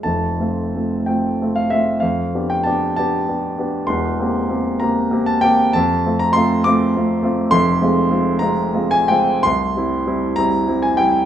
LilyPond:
\new Staff \with { instrumentName = "Grand piano" } { \time 12/8 \key f \major \tempo 4. = 65 << { a''4. g''8. f''16 e''8 f''8. g''16 a''8 a''4. | c'''4. bes''8. a''16 g''8 a''8. bes''16 c'''8 d'''8 r4 | \key f \minor c'''4. bes''8. aes''16 g''8 c'''4. bes''8. aes''16 g''8 | } \\ { <f,, f,>8 <a c' f'>8 <a c' f'>8 <a c' f'>8 <a c' f'>8 <a c' f'>8 f,8 <b d' g'>8 <b d' g'>8 <b d' g'>8 <b d' g'>8 <b d' g'>8 | <e,, e,>8 <bes c' g'>8 <bes c' g'>8 <bes c' g'>8 <bes c' g'>8 <bes c' g'>8 f,8 <a c' f'>8 <a c' f'>8 <a c' f'>8 <a c' f'>8 <a c' f'>8 | <f,, f,>8 <aes c' f'>8 <aes c' f'>8 <aes c' f'>8 <aes c' f'>8 <aes c' f'>8 c,8 <g c' e'>8 <g c' e'>8 <g c' e'>8 <g c' e'>8 <g c' e'>8 | } >> }